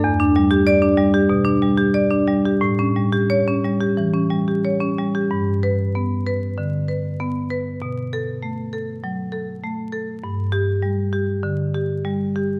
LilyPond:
\new Staff \with { instrumentName = "Marimba" } { \time 4/4 \key g \lydian \tempo 4 = 97 << { r4 d''8 r2 r8 | r4 cis''8 r2 r8 | r8 b'4 r2 r8 | r8 a'4 r2 r8 |
r8 g'4 r2 r8 | } \\ { e,16 d'16 g16 g'8 d'16 g16 g'16 b,16 d'16 g16 g'16 d''16 d'16 g16 g'16 | a,16 cis'16 g16 g'8 cis'16 g16 g'16 e16 cis'16 g16 g'16 cis''16 cis'16 g16 g'16 | g,4 b8 b'8 d8 b'8 b8 b'8 | b,4 a8 a'8 fis8 a'8 a8 a'8 |
g,4 g8 g'8 d8 g'8 g8 g'8 | } >> }